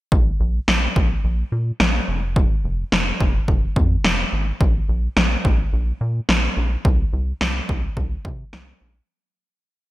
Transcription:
0.12 A#1, kick
0.40 A#1
0.68 A#1, snare
0.96 A#1, kick
1.24 A#1
1.52 A#2
1.80 A#1, snare
2.08 F1
2.36 kick
2.64 F1
2.92 F1, snare
3.20 F1, kick
3.48 F1, kick
3.76 F2, kick
4.04 F1, snare
4.33 G#1
4.61 A#1, kick
4.89 A#1
5.17 A#1, snare
5.45 A#1, kick
5.73 A#1
6.01 A#2
6.29 A#1, snare
6.57 A#1
6.85 C2, kick
7.13 C2
7.41 C2, snare
7.69 C2, kick
7.97 C2, kick
8.25 C3, kick
8.53 C2, snare
8.81 A#1

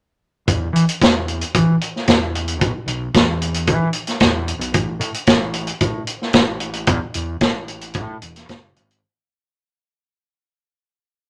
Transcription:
0.47 E2, kick, closed hi-hat
0.73 E3, closed hi-hat
0.89 closed hi-hat
1.02 E2, kick, snare, closed hi-hat
1.28 closed hi-hat
1.41 closed hi-hat
1.55 E3, kick, closed hi-hat
1.81 closed hi-hat
1.96 snare
2.07 E2, kick, snare, closed hi-hat
2.35 closed hi-hat
2.48 closed hi-hat
2.61 B1, kick, closed hi-hat
2.86 B1, closed hi-hat
3.14 E2, kick, snare, closed hi-hat
3.42 closed hi-hat
3.54 closed hi-hat
3.67 E3, kick, closed hi-hat
3.93 closed hi-hat
4.07 snare, closed hi-hat
4.20 E2, kick, snare, closed hi-hat
4.48 closed hi-hat
4.59 B1, closed hi-hat
4.74 A1, kick, closed hi-hat
4.99 A2, closed hi-hat
5.14 closed hi-hat
5.27 A1, kick, snare, closed hi-hat
5.54 closed hi-hat
5.67 closed hi-hat
5.81 A2, kick, closed hi-hat
6.07 closed hi-hat
6.22 snare
6.33 A1, kick, snare, closed hi-hat
6.60 closed hi-hat
6.73 closed hi-hat
6.87 E2, kick, closed hi-hat
7.14 E2, closed hi-hat
7.41 A1, kick, snare, closed hi-hat
7.68 closed hi-hat
7.81 closed hi-hat
7.94 A2, kick, closed hi-hat
8.21 E1, closed hi-hat
8.36 snare, closed hi-hat
8.49 F#1, kick, snare, closed hi-hat
8.76 G#1, closed hi-hat
8.91 closed hi-hat

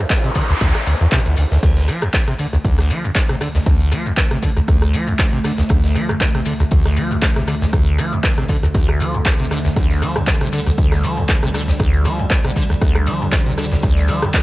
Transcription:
Already playing: noise sweep
0.10 kick, snare, clap, closed hi-hat, maracas
0.24 C3, closed hi-hat
0.35 D3, kick, closed hi-hat, open hi-hat, maracas
0.50 D2, closed hi-hat, maracas
0.61 D2, kick, cross-stick, closed hi-hat, maracas
0.75 cross-stick, closed hi-hat
0.86 D2, closed hi-hat, open hi-hat, maracas
1.00 E2, closed hi-hat, maracas
1.12 C3, kick, snare, clap, closed hi-hat, maracas
1.26 D2, closed hi-hat
1.37 D2, snare, closed hi-hat, open hi-hat, maracas
1.51 D2, snare, maracas
1.63 D2 D3 A3, kick, cross-stick, closed hi-hat, crash, maracas
1.77 snare, closed hi-hat
1.88 F3, cross-stick, closed hi-hat, open hi-hat, maracas
2.02 E2, cross-stick, closed hi-hat, maracas
2.14 kick, snare, clap, closed hi-hat, maracas
2.28 C3, cross-stick, closed hi-hat
2.39 D3, closed hi-hat, open hi-hat, maracas
2.53 D2, cross-stick, maracas
2.65 D2, kick, closed hi-hat, maracas
2.79 cross-stick, snare, closed hi-hat
2.90 F3, closed hi-hat, open hi-hat, maracas
3.04 E2, maracas
3.15 kick, cross-stick, snare, clap, closed hi-hat, maracas
3.29 C3, cross-stick, closed hi-hat
3.41 D3, cross-stick, closed hi-hat, open hi-hat, maracas
3.55 D2, snare, maracas
3.66 D2, kick, cross-stick, closed hi-hat, maracas
3.80 closed hi-hat
3.92 F3, cross-stick, closed hi-hat, open hi-hat, maracas
4.06 E2, closed hi-hat, maracas
4.17 kick, snare, clap, closed hi-hat, maracas
4.31 C3, cross-stick, closed hi-hat
4.42 D3, kick, closed hi-hat, open hi-hat, maracas
4.57 D2, cross-stick, maracas
4.68 D2, kick, cross-stick, closed hi-hat, maracas
4.82 cross-stick, closed hi-hat
4.93 F3, closed hi-hat, open hi-hat, maracas
5.07 E2, maracas
5.19 kick, cross-stick, snare, clap, closed hi-hat, maracas
5.33 C3, closed hi-hat
5.44 D3, cross-stick, snare, closed hi-hat, open hi-hat, maracas
5.57 D2, snare, maracas
5.69 D2, kick, cross-stick, closed hi-hat, maracas
5.84 snare, closed hi-hat
5.95 F3, cross-stick, closed hi-hat, open hi-hat, maracas
6.09 E2, cross-stick, closed hi-hat, maracas
6.20 kick, snare, clap, closed hi-hat, maracas
6.34 C3, cross-stick, closed hi-hat
6.45 D3, closed hi-hat, open hi-hat, maracas
6.60 D2, cross-stick, maracas
6.71 D2, kick, closed hi-hat, maracas
6.85 cross-stick, snare, closed hi-hat
6.96 F3, closed hi-hat, open hi-hat, maracas
7.11 E2, maracas
7.22 kick, cross-stick, snare, clap, closed hi-hat, maracas
7.36 C3, cross-stick, closed hi-hat
7.47 D3, cross-stick, closed hi-hat, open hi-hat, maracas
7.62 D2, snare, maracas
7.73 D2, kick, cross-stick, closed hi-hat, maracas
7.87 closed hi-hat
7.98 F3, cross-stick, closed hi-hat, open hi-hat, maracas
8.12 E2, closed hi-hat, maracas
8.24 kick, snare, clap, closed hi-hat, maracas
8.38 C3, cross-stick, closed hi-hat
8.48 D3, kick, closed hi-hat, open hi-hat, maracas
8.63 D2, cross-stick, closed hi-hat, maracas
8.74 D2, kick, cross-stick, closed hi-hat, maracas
8.89 cross-stick, closed hi-hat
9.00 F3, closed hi-hat, open hi-hat, maracas
9.14 E2, closed hi-hat, maracas
9.25 kick, cross-stick, snare, clap, closed hi-hat, maracas
9.39 C3, closed hi-hat
9.51 D3, cross-stick, snare, closed hi-hat, open hi-hat, maracas
9.65 D2, snare, closed hi-hat, maracas
9.76 D2 G3, kick, cross-stick, closed hi-hat, ride, maracas
9.90 snare, closed hi-hat
10.02 F3, cross-stick, closed hi-hat, open hi-hat, ride, maracas
10.16 E2, cross-stick, closed hi-hat, maracas
10.27 kick, snare, clap, closed hi-hat, ride, maracas
10.41 C3, cross-stick, closed hi-hat
10.52 D3, closed hi-hat, open hi-hat, ride, maracas
10.67 D2, cross-stick, maracas
10.78 D2, kick, closed hi-hat, ride, maracas
10.92 cross-stick, snare, closed hi-hat
11.04 F3, closed hi-hat, open hi-hat, ride, maracas
11.17 E2, maracas
11.29 kick, cross-stick, snare, clap, closed hi-hat, ride, maracas
11.43 C3, cross-stick, closed hi-hat
11.54 D3, cross-stick, closed hi-hat, open hi-hat, ride, maracas
11.68 D2, snare, maracas
11.80 D2, kick, cross-stick, closed hi-hat, ride, maracas
11.94 closed hi-hat
12.04 F3, cross-stick, closed hi-hat, open hi-hat, ride, maracas
12.19 E2, closed hi-hat, maracas
12.30 kick, snare, clap, closed hi-hat, ride, maracas
12.45 C3, cross-stick, closed hi-hat
12.56 D3, kick, closed hi-hat, open hi-hat, ride, maracas
12.70 D2, cross-stick, maracas
12.81 D2, kick, cross-stick, closed hi-hat, ride, maracas
12.95 cross-stick, closed hi-hat
13.06 F3, closed hi-hat, open hi-hat, ride, maracas
13.21 E2, maracas
13.32 kick, cross-stick, snare, clap, closed hi-hat, ride, maracas
13.46 C3, closed hi-hat
13.58 D3, cross-stick, snare, closed hi-hat, open hi-hat, ride, maracas
13.71 D2, snare, maracas
13.83 D2, kick, cross-stick, closed hi-hat, ride, maracas
13.97 snare, closed hi-hat
14.08 F3, cross-stick, closed hi-hat, open hi-hat, ride, maracas
14.22 E2, cross-stick, closed hi-hat, maracas
14.34 kick, snare, clap, closed hi-hat, ride, maracas

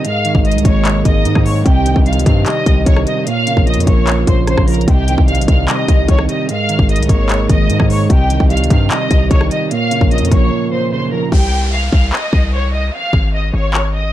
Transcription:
Already playing: D#5
0.05 G#2 G#3 G#4 A#4 F5 F6, closed hi-hat
0.25 D#3, closed hi-hat
0.35 G#1, kick
0.45 G#3 D#5 D#6, closed hi-hat
0.52 C2, closed hi-hat
0.58 closed hi-hat
0.64 G#1 A#3 C#5 C#6, kick, closed hi-hat
0.85 clap, closed hi-hat
1.05 G#1 G#2 D#5 D#6, kick, closed hi-hat
1.25 G#2 D#3, closed hi-hat
1.35 G#2, kick, cross-stick
1.45 G#3 C#5 C#6, open hi-hat
1.65 C2 C3 C4 G4 D#5 G5, kick, closed hi-hat
1.86 D#3, closed hi-hat
1.96 C2, kick
2.05 G3 F5 F6, closed hi-hat
2.13 C#2, closed hi-hat
2.19 closed hi-hat
2.26 G2 C4 F5 F6, kick, closed hi-hat
2.46 D#5 D#6, clap, closed hi-hat
2.66 C2 C3, kick, closed hi-hat
2.86 C2 D#3 C#5 C#6, kick, closed hi-hat
2.96 cross-stick
3.06 G3 D#5 D#6, closed hi-hat
3.27 A#2 A#3 F4 A#4 C#5 F5 F6, closed hi-hat
3.47 C#3, closed hi-hat
3.57 A#1, kick
3.67 F3 D#5 D#6, closed hi-hat
3.74 F2, closed hi-hat
3.80 closed hi-hat
3.87 A#1 A#3 C#5 C#6, kick, closed hi-hat
4.07 clap, closed hi-hat
4.27 A#1 A#2 C5 C6, kick, closed hi-hat
4.47 C#3 C5 C6, cross-stick, closed hi-hat
4.58 A#1, kick, cross-stick
4.67 F3 A#4 A#5, closed hi-hat, open hi-hat
4.74 closed hi-hat
4.81 closed hi-hat
4.88 C2 C3 C4 G4 D#5 G5, kick, closed hi-hat
5.08 D#3, closed hi-hat
5.18 C2, kick
5.28 G3 F5 F6, closed hi-hat
5.35 A#1, closed hi-hat
5.41 closed hi-hat
5.48 C2 C4 F5 F6, kick, closed hi-hat
5.68 D#5 D#6, clap, closed hi-hat
5.88 C2 C3, kick, closed hi-hat
6.08 C2 D#3 C#5 C#6, kick, closed hi-hat
6.19 cross-stick
6.29 G3 D#5 D#6, closed hi-hat
6.49 G#2 G#3 G#4 A#4 D#5 F5 F6, closed hi-hat
6.69 D#3, closed hi-hat
6.79 G#1, kick
6.89 G#3 D#5 D#6, closed hi-hat
6.96 C2, closed hi-hat
7.03 closed hi-hat
7.09 G#1 A#3 C#5 C#6, kick, closed hi-hat
7.29 clap, closed hi-hat
7.49 G#1 G#2 D#5 D#6, kick, closed hi-hat
7.70 G#2 D#3, closed hi-hat
7.80 G#2, kick, cross-stick
7.89 G#3 C#5 C#6, open hi-hat
8.10 C2 C3 C4 G4 G5, kick, closed hi-hat
8.30 D#3, closed hi-hat
8.40 C2, kick
8.49 G3 F5 F6, closed hi-hat
8.57 C#2, closed hi-hat
8.64 closed hi-hat
8.70 G2 C4 F5 F6, kick, closed hi-hat
8.90 D#5 D#6, clap, closed hi-hat
9.11 C2 C3, kick, closed hi-hat
9.30 C2 D#3 C#5 C#6, kick, closed hi-hat
9.41 cross-stick
9.51 G3 D#5 D#6, closed hi-hat
9.71 A#2 A#3 F4 A#4 C#5 F5 F6, closed hi-hat
9.91 C#3, closed hi-hat
10.01 A#1, kick
10.11 F3 D#5 D#6, closed hi-hat
10.18 F2, closed hi-hat
10.25 closed hi-hat
10.31 A#1 A#3 C#5 C#6, kick, closed hi-hat
10.71 A#2 C5 C6
10.91 C#3 C5 C6
11.12 F3 A#4 A#5
11.32 C2 G4 G5, kick, downlifter
11.72 F5 F6
11.93 C2 F5 F6, kick
12.13 D#5 D#6, clap
12.33 C2, kick
12.53 C#5 C#6
12.73 D#5 D#6
12.94 F5 F6
13.13 G#1, kick
13.34 D#5 D#6
13.53 G#1 C#5 C#6
13.74 clap
13.94 D#5 D#6

